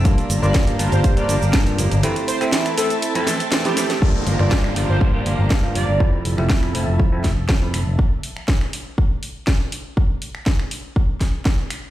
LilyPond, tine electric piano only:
\new Staff \with { instrumentName = "Tine electric piano" } { \time 4/4 \key f \major \tempo 4 = 121 <g bes d' f'>8. <g bes d' f'>8. <g bes d' f'>8. <g bes d' f'>16 r8. <g bes d' f'>16 r8 | <a c' e'>8. <a c' e'>8. <a c' e'>8. <f a c' e'>16 r8. <f a c' e'>16 r8 | <g bes d' f'>8. <g bes d' f'>8. <g bes d' f'>8. <g bes d' f'>16 r8. <g bes d' f'>16 r8 | <f a c' e'>8. <f a c' e'>8. <f a c' e'>8. <f a c' e'>16 r8. <f a c' e'>16 r8 |
r1 | r1 | }